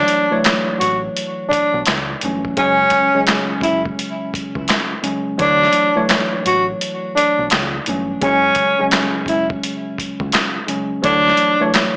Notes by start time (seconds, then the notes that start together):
Already playing: D2 E3 F#3 A3 D4 C#5
0.08 closed hi-hat
0.31 D2 E3 F#3 A3 C#5
0.44 snare, clap, closed hi-hat
0.79 A1 F#4, closed hi-hat
1.17 closed hi-hat
1.49 D4, kick, closed hi-hat
1.74 B1
1.86 C#2, snare, clap, closed hi-hat
2.21 G1 D2 E3 F#3 A3 C#4, closed hi-hat
2.45 kick
2.57 F#1 C#3 F#3 G#3 C#4, kick, closed hi-hat
2.90 kick, closed hi-hat
3.14 C#3 F#3 G#3 C#4
3.27 snare, clap, closed hi-hat
3.61 F#1 E4, kick, closed hi-hat
3.85 kick
3.99 closed hi-hat
4.34 kick, closed hi-hat
4.55 C#2, kick
4.68 snare, clap, closed hi-hat
5.02 C#3 F#3 G#3 C#4, closed hi-hat
5.37 D2 E3 F#3 A3 D4 C#5, kick, closed hi-hat
5.63 snare
5.73 closed hi-hat
5.95 D2 E3 F#3 A3 C#5
6.09 snare, clap, closed hi-hat
6.46 A1 F#4, closed hi-hat
6.81 closed hi-hat
7.16 D4, closed hi-hat
7.39 B1
7.50 C#2, snare, clap, closed hi-hat
7.86 G1 D2 E3 F#3 A3 C#4, closed hi-hat
8.21 F#1 C#3 F#3 G#3 C#4, kick, closed hi-hat
8.55 kick, closed hi-hat
8.79 C#3 F#3 G#3 C#4
8.91 snare, clap, closed hi-hat
9.26 F#1 E4, kick, closed hi-hat
9.50 kick
9.63 closed hi-hat
9.98 kick, closed hi-hat
10.20 C#2, kick
10.32 snare, clap, closed hi-hat
10.67 C#3 F#3 G#3 C#4, closed hi-hat
11.02 D2 E3 F#3 A3 D4 C#5, kick, closed hi-hat
11.28 snare
11.37 closed hi-hat
11.60 D2 E3 F#3 A3 C#5
11.74 snare, clap, closed hi-hat